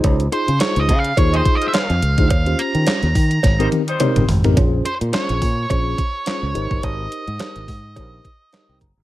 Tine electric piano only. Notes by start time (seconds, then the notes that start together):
Already playing: D#4 F4 G#4 C5
0.32 D#4 F4 G#4 C5
0.60 D#4 F4 G#4 C5
1.17 D#4 F4 G#4 C5
2.18 D#4 F4 G#4 C5
2.46 C#4 F4 G4 C5
3.59 C4 D#4 G4 A#4
4.00 C4 D#4 G4 A#4
4.44 C4 D#4 G4 A#4
4.57 C#4 F4 G#4 C5
5.13 C#4 F4 G#4 C5
5.70 C#4 F4 G#4 C5
6.26 C#4 F4 G#4 C5
6.55 D#4 G4 A#4 C5
7.40 D#4 G4 A#4 C5
7.96 D#4 G4 A#4 C5
8.53 D#4 G4 A#4 C5 D#5
8.69 G5
8.82 A#5